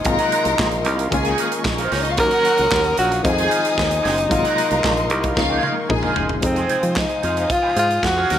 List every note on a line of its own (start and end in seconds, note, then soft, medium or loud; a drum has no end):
0.00 1.35 D#4 medium
0.04 0.17 G#1 loud
0.04 1.09 C3 medium
0.04 1.10 F#3 medium
0.04 1.10 G#3 medium
0.04 1.10 A#3 medium
0.04 1.11 F4 medium
0.04 2.16 A#4 medium
0.04 0.84 A#4 medium
0.04 1.11 F5 medium
0.04 0.84 A#5 loud
0.04 1.11 C6 medium
0.04 muted clean electric guitar stroke soft
0.04 kick loud
0.04 closed hi-hat medium
0.19 0.30 C4 medium
0.19 0.31 F#4 medium
0.19 0.32 A#4 medium
0.19 0.32 F#5 medium
0.19 closed hi-hat medium
0.31 0.44 C4 medium
0.31 0.45 F#4 medium
0.31 0.45 A#4 medium
0.31 0.45 F#5 medium
0.31 closed hi-hat medium
0.45 0.56 C2 medium
0.45 muted clean electric guitar stroke medium
0.45 closed hi-hat soft
0.59 0.86 A#1 loud
0.59 muted clean electric guitar stroke soft
0.59 kick loud
0.59 snare loud
0.59 clap loud
0.71 muted clean electric guitar stroke soft
0.71 closed hi-hat soft
0.85 1.07 C2 medium
0.85 0.98 C4 medium
0.85 0.98 F#4 medium
0.85 0.97 A#4 medium
0.85 0.96 F5 medium
0.85 closed hi-hat medium
0.97 1.11 C4 medium
0.97 1.11 F#4 medium
0.97 1.11 A#4 medium
0.97 1.10 F5 medium
0.97 closed hi-hat medium
1.11 1.34 C#2 loud
1.11 2.16 D#3 medium
1.11 2.16 G#3 medium
1.11 2.16 A#3 medium
1.11 2.17 C#4 medium
1.11 2.17 F4 loud
1.11 1.59 G#4 loud
1.11 2.18 D#5 medium
1.11 1.59 G#5 loud
1.11 2.18 C#6 medium
1.11 muted clean electric guitar stroke soft
1.11 kick loud
1.11 closed hi-hat medium
1.24 1.37 D#4 medium
1.24 1.38 A#4 medium
1.24 1.39 C#5 medium
1.24 1.40 G#5 loud
1.24 closed hi-hat medium
1.38 1.51 D#4 medium
1.38 1.51 A#4 medium
1.38 1.51 C#5 medium
1.38 1.51 F5 medium
1.38 closed hi-hat medium
1.52 muted clean electric guitar stroke soft
1.52 closed hi-hat soft
1.64 1.87 A#1 medium
1.64 1.74 G#3 medium
1.64 1.74 G#4 medium
1.64 muted clean electric guitar stroke soft
1.64 kick loud
1.64 snare loud
1.64 clap medium
1.75 1.83 A#3 medium
1.75 1.84 A#4 medium
1.75 closed hi-hat medium
1.79 1.90 D#4 medium
1.79 1.90 A#4 medium
1.79 1.91 C#5 medium
1.79 1.92 F5 medium
1.83 1.92 C4 medium
1.83 1.92 C5 medium
1.91 2.18 C#2 loud
1.91 2.01 C#4 medium
1.91 2.03 D#4 medium
1.91 2.04 A#4 medium
1.91 2.04 C#5 medium
1.91 2.01 C#5 medium
1.91 2.04 G#5 medium
1.91 snare soft
1.91 open hi-hat medium
2.01 2.10 D#4 medium
2.01 2.10 D#5 loud
2.01 closed hi-hat soft
2.05 muted clean electric guitar stroke soft
2.10 2.19 F4 medium
2.10 2.19 F5 medium
2.17 2.29 D#2 loud
2.17 3.22 D#3 medium
2.17 3.22 F#3 medium
2.17 3.22 A#3 medium
2.17 3.23 C#4 medium
2.17 2.96 F#4 medium
2.17 3.23 F#4 medium
2.17 2.95 A#4 loud
2.17 3.25 C#5 medium
2.17 2.96 F#5 loud
2.17 3.24 F#5 medium
2.17 3.23 D#6 medium
2.17 muted clean electric guitar stroke soft
2.17 kick loud
2.17 closed hi-hat medium
2.31 2.43 C#4 medium
2.31 2.43 F#4 medium
2.31 2.44 A#4 medium
2.31 2.44 F#5 medium
2.31 closed hi-hat medium
2.44 2.57 C#4 medium
2.44 2.57 F#4 medium
2.44 2.57 A#4 medium
2.44 2.57 F#5 medium
2.44 closed hi-hat medium
2.58 2.70 C#2 medium
2.58 muted clean electric guitar stroke soft
2.58 closed hi-hat soft
2.71 2.93 D#2 loud
2.71 muted clean electric guitar stroke medium
2.71 kick loud
2.71 snare loud
2.71 clap loud
2.84 muted clean electric guitar stroke soft
2.84 closed hi-hat soft
2.97 3.20 A#1 loud
2.97 3.11 C#4 medium
2.97 3.10 F#4 medium
2.97 3.23 F#4 loud
2.97 3.10 A#4 medium
2.97 3.09 F5 medium
2.97 closed hi-hat medium
3.10 3.23 C#4 medium
3.10 3.23 F#4 medium
3.10 3.23 A#4 medium
3.10 3.23 F5 medium
3.10 closed hi-hat medium
3.23 3.46 F2 loud
3.23 4.28 D#3 medium
3.23 4.28 F3 medium
3.23 4.29 G#3 medium
3.23 4.29 C4 medium
3.23 5.86 D#4 loud
3.23 4.29 F4 medium
3.23 4.03 G#4 loud
3.23 4.29 C5 medium
3.23 4.29 G#5 medium
3.23 4.03 G#5 loud
3.23 4.29 D#6 loud
3.23 muted clean electric guitar stroke medium
3.23 kick loud
3.23 closed hi-hat medium
3.37 3.48 D#4 medium
3.37 3.48 G#4 medium
3.37 3.50 C5 loud
3.37 3.50 G#5 loud
3.37 closed hi-hat medium
3.49 3.62 D#4 medium
3.49 3.62 G#4 medium
3.49 3.63 C5 medium
3.49 3.63 F5 medium
3.49 closed hi-hat medium
3.64 muted clean electric guitar stroke medium
3.64 closed hi-hat soft
3.77 3.99 D#2 medium
3.77 muted clean electric guitar stroke soft
3.77 kick loud
3.77 snare loud
3.77 clap medium
3.91 muted clean electric guitar stroke soft
3.91 closed hi-hat medium
4.03 4.26 F#1 loud
4.03 4.19 D#4 medium
4.03 4.17 G#4 medium
4.03 4.16 C5 loud
4.03 4.16 G#5 medium
4.03 snare soft
4.03 open hi-hat medium
4.17 muted clean electric guitar stroke medium
4.17 closed hi-hat soft
4.28 4.42 G#1 loud
4.28 5.33 C3 medium
4.28 5.34 F#3 medium
4.28 5.34 G#3 medium
4.28 5.35 A#3 medium
4.28 5.35 F4 loud
4.28 5.09 A#4 medium
4.28 6.41 A#4 medium
4.28 5.36 F5 medium
4.28 5.09 A#5 loud
4.28 5.36 C6 medium
4.28 muted clean electric guitar stroke soft
4.28 kick loud
4.28 closed hi-hat medium
4.44 4.56 C4 medium
4.44 4.56 F#4 medium
4.44 4.57 A#4 medium
4.44 4.57 F#5 loud
4.44 closed hi-hat soft
4.57 4.69 C4 medium
4.57 4.69 F#4 medium
4.57 4.70 A#4 medium
4.57 4.70 F#5 medium
4.57 closed hi-hat medium
4.70 4.82 C2 medium
4.70 muted clean electric guitar stroke soft
4.70 closed hi-hat soft
4.83 5.11 A#1 medium
4.83 muted clean electric guitar stroke soft
4.83 kick loud
4.83 snare loud
4.83 clap medium
4.97 muted clean electric guitar stroke soft
4.97 closed hi-hat soft
5.10 5.32 C2 loud
5.10 5.24 C4 medium
5.10 5.23 F#4 loud
5.10 5.23 A#4 medium
5.10 5.22 F5 medium
5.10 closed hi-hat medium
5.24 5.36 C4 soft
5.24 5.36 F#4 medium
5.24 5.36 A#4 medium
5.24 5.36 F5 medium
5.24 kick medium
5.24 closed hi-hat soft
5.35 5.58 C#2 loud
5.35 5.89 C#3 medium
5.35 5.88 F3 medium
5.35 5.89 G#3 medium
5.35 5.89 A#3 medium
5.35 5.90 D#4 medium
5.35 5.63 F4 medium
5.35 5.87 D#5 medium
5.35 5.63 F5 loud
5.35 5.89 C#6 medium
5.35 muted clean electric guitar stroke soft
5.35 kick loud
5.35 snare medium
5.49 5.61 D#4 medium
5.49 5.62 G#4 medium
5.49 5.62 A#4 medium
5.49 5.64 G#5 medium
5.62 5.75 D#4 medium
5.62 5.75 G#4 medium
5.62 5.76 A#4 medium
5.62 5.75 F5 medium
5.62 high tom medium
5.76 muted clean electric guitar stroke soft
5.88 6.11 A#1 medium
5.88 6.40 C3 medium
5.88 6.41 F3 medium
5.88 6.42 G#3 medium
5.88 6.43 A#3 medium
5.88 6.43 D#4 medium
5.88 6.16 G#4 medium
5.88 6.42 D#5 medium
5.88 6.41 G#5 medium
5.88 6.16 G#5 medium
5.88 6.42 C6 medium
5.88 muted clean electric guitar stroke soft
5.88 kick loud
5.88 mid tom medium
6.03 6.14 D#4 medium
6.03 6.15 G#4 medium
6.03 6.15 C5 medium
6.03 6.17 F5 medium
6.03 mid tom medium
6.15 6.38 F#1 medium
6.15 6.28 D#4 medium
6.15 6.28 G#4 medium
6.15 6.28 C5 medium
6.15 6.28 G#5 medium
6.15 floor tom loud
6.28 muted clean electric guitar stroke soft
6.28 floor tom loud
6.41 6.65 F2 loud
6.41 8.25 C3 medium
6.41 8.25 F3 medium
6.41 8.26 G#3 medium
6.41 8.26 D#4 medium
6.41 8.27 C5 medium
6.41 8.27 F5 medium
6.41 8.27 G#5 medium
6.41 8.39 D#6 medium
6.41 muted clean electric guitar stroke soft
6.41 kick loud
6.41 closed hi-hat medium
6.46 7.00 C4 medium
6.55 6.68 D#4 medium
6.55 6.69 G#4 medium
6.55 6.70 C5 medium
6.55 6.70 G#5 medium
6.55 closed hi-hat soft
6.69 6.81 D#4 medium
6.69 6.82 G#4 medium
6.69 6.82 C5 medium
6.69 6.82 G#5 medium
6.69 closed hi-hat medium
6.83 7.04 F3 medium
6.83 muted clean electric guitar stroke medium
6.83 closed hi-hat soft
6.95 7.53 D#4 medium
6.95 muted clean electric guitar stroke soft
6.95 kick loud
6.95 snare loud
6.95 clap medium
7.09 muted clean electric guitar stroke soft
7.09 closed hi-hat soft
7.23 7.45 F2 medium
7.23 7.36 D#4 medium
7.23 7.36 G#4 medium
7.23 7.35 C5 medium
7.23 7.35 F5 medium
7.23 closed hi-hat medium
7.36 7.48 D#4 soft
7.36 7.48 G#4 medium
7.36 7.48 C5 medium
7.36 7.48 F5 medium
7.36 closed hi-hat soft
7.49 7.77 F4 medium
7.49 muted clean electric guitar stroke soft
7.49 kick loud
7.49 closed hi-hat medium
7.62 7.75 D#4 medium
7.62 7.76 G#4 medium
7.62 7.76 C5 medium
7.62 7.77 G#5 medium
7.76 7.98 G#2 loud
7.76 7.88 D#4 medium
7.76 8.07 F4 loud
7.76 7.88 G#4 medium
7.76 7.89 C5 medium
7.76 7.89 F5 medium
7.76 closed hi-hat medium
7.90 muted clean electric guitar stroke soft
7.90 closed hi-hat soft
8.03 8.24 F2 medium
8.03 8.39 F#4 loud
8.03 muted clean electric guitar stroke soft
8.03 kick medium
8.03 snare medium
8.03 clap medium
8.17 8.29 D#4 medium
8.17 8.30 G#4 medium
8.17 8.30 C5 medium
8.17 8.30 F5 medium
8.28 8.39 D#2 medium
8.28 8.39 C#3 medium
8.28 8.39 F#3 medium
8.28 8.39 A#3 medium
8.28 8.39 C#4 medium
8.28 8.39 D#4 medium
8.28 8.39 F#4 medium
8.28 8.39 A#4 medium
8.28 8.39 C#5 medium
8.28 8.39 F5 medium
8.28 8.39 F#5 medium
8.28 8.39 A#5 medium
8.28 snare soft
8.28 closed hi-hat medium